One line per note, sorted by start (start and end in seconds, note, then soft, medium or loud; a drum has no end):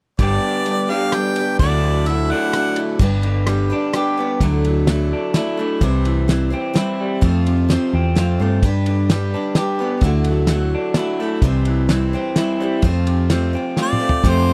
0.19 0.37 G1 medium
0.19 0.88 G2 medium
0.19 0.89 D3 medium
0.19 0.65 G3 medium
0.19 0.89 G3 medium
0.19 0.90 B3 medium
0.19 0.90 D4 medium
0.19 0.66 G4 medium
0.19 0.67 B4 medium
0.19 0.92 D5 medium
0.19 0.68 D5 medium
0.19 kick medium
0.19 ride soft
0.23 0.88 G4 medium
0.66 0.90 G3 soft
0.66 0.90 G4 medium
0.66 0.90 B4 medium
0.66 0.89 D5 soft
0.66 ride soft
0.89 1.60 G2 medium
0.89 1.59 D3 medium
0.89 1.60 G3 medium
0.89 1.59 B3 medium
0.89 1.62 D4 medium
0.89 1.58 G4 medium
0.89 1.14 G4 soft
0.89 1.14 B4 soft
0.89 1.13 D5 soft
0.89 1.16 F5 medium
1.12 1.37 G3 soft
1.12 1.38 G4 medium
1.12 1.59 G5 medium
1.12 cross-stick medium
1.12 ride soft
1.17 1.38 B4 soft
1.17 1.37 D5 soft
1.36 1.61 B4 soft
1.36 1.61 D5 soft
1.36 ride medium
1.41 1.62 G4 soft
1.59 2.31 D2 medium
1.59 2.29 D3 medium
1.59 2.07 D3 medium
1.59 2.29 F#3 medium
1.59 2.30 A3 medium
1.59 2.05 D4 medium
1.59 2.30 D4 medium
1.59 2.08 E4 medium
1.59 2.06 F#4 medium
1.59 2.08 A4 medium
1.59 2.09 D5 medium
1.59 kick medium
1.59 ride medium
1.63 2.29 E4 medium
2.06 2.30 D4 soft
2.06 2.31 E4 medium
2.06 2.31 F#4 medium
2.06 2.29 A4 medium
2.06 2.32 E5 medium
2.06 ride medium
2.30 3.01 D3 medium
2.30 3.00 F#3 medium
2.30 3.00 A3 medium
2.30 3.00 D4 medium
2.30 2.99 E4 medium
2.30 2.55 E4 soft
2.30 2.54 F#4 soft
2.30 2.54 A4 soft
2.30 2.78 F#5 medium
2.53 2.78 D4 soft
2.53 2.77 E4 medium
2.53 2.78 F#4 medium
2.53 cross-stick medium
2.53 ride medium
2.58 2.75 A4 soft
2.76 3.01 E4 soft
2.76 3.01 F#4 soft
2.76 3.00 A4 soft
2.76 ride medium
2.99 3.71 G1 medium
2.99 4.18 G2 medium
2.99 3.48 G3 medium
2.99 3.46 B3 medium
2.99 3.47 D4 medium
2.99 3.47 G4 medium
2.99 3.48 B4 medium
2.99 kick medium
2.99 crash medium
3.23 4.41 D3 medium
3.23 ride medium
3.47 4.41 G3 medium
3.47 3.71 B3 medium
3.47 3.71 D4 soft
3.47 3.69 G4 medium
3.47 3.68 B4 medium
3.47 cross-stick medium
3.47 ride medium
3.70 3.93 D4 soft
3.70 4.42 D4 medium
3.70 3.94 G4 soft
3.70 3.94 B4 soft
3.93 4.17 B3 medium
3.93 4.18 D4 medium
3.93 4.17 G4 medium
3.93 4.42 G4 medium
3.93 4.16 B4 medium
3.93 cross-stick medium
3.93 ride medium
4.17 4.42 B3 medium
4.17 4.41 D4 soft
4.17 4.42 G4 soft
4.17 4.41 B4 soft
4.40 5.12 D2 medium
4.40 4.88 D3 medium
4.40 5.59 D3 medium
4.40 4.88 F#3 medium
4.40 4.87 A3 medium
4.40 4.87 D4 medium
4.40 4.89 E4 medium
4.40 4.89 A4 medium
4.40 kick medium
4.40 ride medium
4.65 4.88 F#3 medium
4.65 ride medium
4.87 5.83 F#3 medium
4.87 5.33 A3 soft
4.87 5.35 D4 medium
4.87 5.36 E4 medium
4.87 5.36 A4 medium
4.87 snare medium
4.87 ride medium
5.13 5.83 D4 medium
5.34 5.58 A3 medium
5.34 5.58 D4 medium
5.34 5.82 E4 medium
5.34 5.58 E4 medium
5.34 5.56 A4 medium
5.34 snare medium
5.34 ride medium
5.57 5.82 A3 medium
5.57 5.82 A3 soft
5.57 5.82 D4 soft
5.57 5.82 E4 soft
5.57 5.81 A4 soft
5.81 6.53 C2 medium
5.81 6.28 C3 medium
5.81 6.99 C3 medium
5.81 6.29 E3 medium
5.81 6.27 G3 medium
5.81 6.29 C4 medium
5.81 6.29 E4 medium
5.81 6.31 C5 medium
5.81 kick loud
5.81 ride medium
6.05 6.29 E3 medium
6.05 ride soft
6.28 7.23 E3 medium
6.28 6.52 G3 medium
6.28 6.51 C4 medium
6.28 6.50 E4 medium
6.28 6.49 C5 medium
6.28 snare medium
6.28 ride medium
6.50 6.72 G3 soft
6.50 6.73 C4 soft
6.50 7.23 C4 medium
6.50 6.74 E4 soft
6.50 6.75 C5 soft
6.74 7.21 G3 medium
6.74 7.21 C4 medium
6.74 7.22 E4 medium
6.74 7.23 E4 medium
6.74 7.22 C5 medium
6.74 snare medium
6.74 ride soft
7.01 7.23 G3 medium
7.21 7.76 F2 medium
7.21 8.40 F2 medium
7.21 7.69 F3 medium
7.21 7.67 A3 medium
7.21 7.68 C4 medium
7.21 7.69 F4 medium
7.21 7.70 C5 medium
7.21 kick medium
7.21 ride medium
7.46 8.64 C3 soft
7.46 ride medium
7.69 8.64 F3 medium
7.69 8.14 A3 medium
7.69 8.15 C4 medium
7.69 8.16 F4 medium
7.69 8.17 C5 medium
7.69 snare medium
7.69 ride medium
7.93 8.14 E2 medium
7.93 8.64 C4 medium
8.15 8.37 F2 medium
8.15 8.39 A3 medium
8.15 8.40 C4 medium
8.15 8.40 F4 medium
8.15 8.64 F4 medium
8.15 8.38 C5 medium
8.15 snare medium
8.15 ride medium
8.39 8.61 G2 medium
8.39 8.64 A3 medium
8.39 8.64 C4 soft
8.39 8.64 F4 soft
8.39 8.63 C5 soft
8.62 9.34 G2 medium
8.62 9.81 G2 medium
8.62 9.09 G3 medium
8.62 9.10 D4 medium
8.62 9.11 G4 medium
8.62 9.11 B4 medium
8.62 kick medium
8.62 ride medium
8.86 10.04 D3 medium
8.86 ride medium
9.10 9.33 G3 medium
9.10 10.04 G3 medium
9.10 9.34 D4 medium
9.10 9.34 G4 medium
9.10 9.33 B4 medium
9.10 snare medium
9.10 ride medium
9.34 10.04 D4 medium
9.34 9.55 D4 soft
9.34 9.56 G4 soft
9.34 9.57 B4 soft
9.55 9.80 G3 medium
9.55 9.80 D4 medium
9.55 9.79 G4 medium
9.55 10.04 G4 medium
9.55 9.78 B4 medium
9.55 snare medium
9.55 ride medium
9.79 10.04 B3 medium
9.79 10.04 D4 soft
9.79 10.04 G4 soft
9.79 10.03 B4 soft
10.01 10.74 D2 medium
10.01 10.50 D3 medium
10.01 11.21 D3 medium
10.01 10.48 A3 medium
10.01 10.49 E4 medium
10.01 10.50 F#4 medium
10.01 10.50 A4 medium
10.01 kick medium
10.01 ride medium
10.24 10.49 F#3 medium
10.24 ride medium
10.47 11.44 F#3 medium
10.47 10.95 A3 medium
10.47 10.96 E4 medium
10.47 10.97 F#4 medium
10.47 snare medium
10.47 ride medium
10.52 10.98 A4 medium
10.75 11.44 D4 medium
10.94 11.20 A3 medium
10.94 11.21 E4 medium
10.94 11.44 E4 medium
10.94 snare medium
10.94 ride medium
10.99 11.21 F#4 medium
10.99 11.19 A4 medium
11.20 11.44 A3 medium
11.20 11.44 E4 soft
11.20 11.44 F#4 soft
11.20 11.44 A4 soft
11.42 12.14 C2 medium
11.42 12.60 C3 medium
11.42 11.90 C3 medium
11.42 11.91 E3 medium
11.42 11.89 G3 medium
11.42 11.91 C4 medium
11.42 11.91 E4 medium
11.42 11.92 C5 medium
11.42 kick medium
11.42 ride medium
11.65 11.89 E3 medium
11.65 ride medium
11.89 12.84 E3 medium
11.89 12.14 G3 medium
11.89 12.14 C4 medium
11.89 12.13 E4 medium
11.89 12.12 C5 medium
11.89 snare medium
11.89 ride medium
12.13 12.35 G3 soft
12.13 13.55 C4 medium
12.13 12.36 C4 soft
12.13 12.37 E4 soft
12.13 12.37 C5 soft
12.36 12.60 G3 medium
12.36 12.61 C4 medium
12.36 12.84 E4 medium
12.36 12.60 E4 medium
12.36 12.59 C5 medium
12.36 snare medium
12.36 ride medium
12.60 12.84 G3 medium
12.60 12.83 G3 soft
12.60 12.83 C4 soft
12.60 12.84 E4 soft
12.60 12.84 C5 medium
12.82 13.55 F2 medium
12.82 14.01 F2 medium
12.82 13.30 F3 medium
12.82 13.29 A3 medium
12.82 13.30 C4 medium
12.82 13.31 F4 medium
12.82 13.32 C5 medium
12.82 kick loud
12.82 ride medium
13.07 14.23 C3 medium
13.07 ride medium
13.30 14.23 F3 medium
13.30 13.54 A3 medium
13.30 13.55 C4 medium
13.30 13.54 F4 medium
13.30 13.52 C5 medium
13.30 snare medium
13.30 ride medium
13.53 14.25 C4 medium
13.53 13.77 C4 soft
13.53 13.77 F4 soft
13.53 13.77 C5 soft
13.77 14.01 A3 medium
13.77 14.01 C4 medium
13.77 14.01 F4 medium
13.77 14.25 F4 medium
13.77 13.99 C5 medium
13.77 snare soft
13.82 14.30 D5 medium
13.93 mid tom medium
14.00 14.24 A3 medium
14.00 14.25 C4 soft
14.00 14.24 F4 soft
14.00 14.24 C5 soft
14.09 floor tom medium
14.23 14.53 F2 medium
14.23 14.53 C3 medium
14.23 14.53 F3 medium
14.23 14.53 A3 medium
14.23 14.53 C4 medium
14.23 14.53 F4 medium
14.23 14.53 C5 medium
14.23 kick loud
14.23 closed hi-hat medium
14.28 14.53 C5 medium